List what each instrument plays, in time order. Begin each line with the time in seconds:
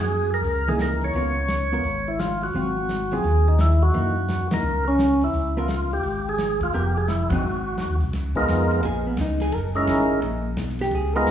Already playing: tonewheel organ F#2
0.00 tonewheel organ G#4
0.34 tonewheel organ A#4
0.43 tonewheel organ C#2, open hi-hat
0.68 hollow-body jazz guitar E3 A#3 D#4, tonewheel organ G#4
0.79 tonewheel organ A#4, snare, closed hi-hat
1.01 tonewheel organ C#5, open hi-hat
1.13 tonewheel organ C#2, hollow-body jazz guitar B3 F4 A#4, open hi-hat
1.48 snare, closed hi-hat
1.72 hollow-body jazz guitar B3 F4 A#4
1.84 tonewheel organ G#1, open hi-hat
2.08 tonewheel organ E4
2.19 tonewheel organ F4, snare, closed hi-hat
2.41 tonewheel organ F#4, open hi-hat
2.53 tonewheel organ G#1, hollow-body jazz guitar F#3 C4 F4, open hi-hat
2.89 snare, closed hi-hat
3.11 hollow-body jazz guitar F#3 C4 F4, tonewheel organ G#4, open hi-hat
3.23 tonewheel organ D#2, open hi-hat
3.48 tonewheel organ D#4
3.59 tonewheel organ E4, snare, closed hi-hat
3.83 tonewheel organ F#4
3.93 tonewheel organ F#2, hollow-body jazz guitar E3 A#3 D#4, open hi-hat
4.28 snare, closed hi-hat
4.51 tonewheel organ F#2 A#4, hollow-body jazz guitar E3 A#3 D#4, snare, ride
4.62 tonewheel organ C#2
4.88 tonewheel organ C#4
4.99 snare, closed hi-hat
5.21 tonewheel organ E4, open hi-hat
5.33 tonewheel organ C#2, open hi-hat
5.57 hollow-body jazz guitar B3 F4 A#4, tonewheel organ F4
5.68 snare, closed hi-hat
5.91 tonewheel organ G4, open hi-hat
6.03 tonewheel organ G#1, open hi-hat
6.29 tonewheel organ G#4
6.38 snare, closed hi-hat
6.61 tonewheel organ F4, kick, open hi-hat
6.73 tonewheel organ F1 G4, hollow-body jazz guitar B3 F4 A#4, open hi-hat
6.97 tonewheel organ G#4
7.08 tonewheel organ E4, snare, closed hi-hat
7.30 hollow-body jazz guitar F#3 C4 D#4, tonewheel organ F#4, kick, ride
7.42 tonewheel organ G#1
7.78 snare, closed hi-hat
7.89 tonewheel organ D#2
8.01 tonewheel organ C2, open hi-hat
8.12 tonewheel organ C#2, snare, ride
8.35 tonewheel organ G#3 B3 D#4 F4 A#4, kick
8.47 tonewheel organ F2, snare, hi-hat pedal, ride
8.71 ride
8.82 tonewheel organ A#1, hollow-body jazz guitar G#4, ride
9.07 hollow-body jazz guitar B3
9.17 tonewheel organ C#2, snare, hi-hat pedal, ride
9.21 hollow-body jazz guitar D#4
9.40 hollow-body jazz guitar G#4, snare, ride
9.52 tonewheel organ F#1, hollow-body jazz guitar A#4, ride
9.75 tonewheel organ G#3 C#4 D#4 E4 A#4
9.87 tonewheel organ G#1, snare, hi-hat pedal, ride
10.22 tonewheel organ A#1, ride
10.57 tonewheel organ B1, snare, hi-hat pedal, ride
10.69 snare
10.79 hollow-body jazz guitar G4, snare, ride
10.91 tonewheel organ C#2, hollow-body jazz guitar G#4, ride
11.16 tonewheel organ G#3 B3 D#4 F4 A#4, hollow-body jazz guitar B4
11.26 tonewheel organ D#2, snare, hi-hat pedal, ride